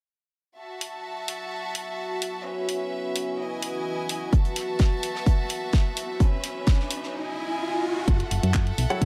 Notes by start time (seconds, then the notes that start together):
0.58 F#4 E5 A5
0.81 open hi-hat
1.17 B4
1.22 E5
1.28 open hi-hat
1.75 open hi-hat
2.22 open hi-hat
2.45 C#4 B4 E5
2.69 open hi-hat
3.16 open hi-hat
3.39 E4 D#5 G#5
3.62 open hi-hat
4.09 open hi-hat
4.33 F#4 E5 A5, kick, closed hi-hat, riser
4.45 closed hi-hat
4.56 snare, closed hi-hat, open hi-hat
4.79 kick, snare, closed hi-hat
5.03 closed hi-hat, open hi-hat
5.15 E5, snare
5.26 kick, closed hi-hat
5.49 closed hi-hat, open hi-hat
5.73 kick, snare, closed hi-hat
5.97 closed hi-hat, open hi-hat
6.20 C#4 B4, kick, closed hi-hat
6.43 snare, closed hi-hat, open hi-hat
6.67 kick, snare, closed hi-hat
6.80 snare
6.90 closed hi-hat, open hi-hat
7.03 snare
7.14 E4 D#5 G#5
8.08 F#1 A4 E5 F#5, kick, closed hi-hat
8.20 closed hi-hat
8.31 F#1, open hi-hat
8.43 F#2, closed hi-hat
8.54 kick, clap, closed hi-hat
8.67 closed hi-hat
8.78 B1, open hi-hat
8.90 F#3 E4 A4 C#5 F#5, closed hi-hat
9.01 kick, closed hi-hat